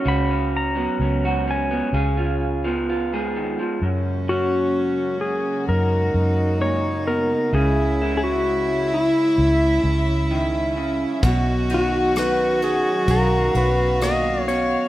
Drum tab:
RD |--------|--------|--------|xxxxxxxx|
SD |--------|--------|--------|--r---r-|
BD |--------|--------|--------|o---o---|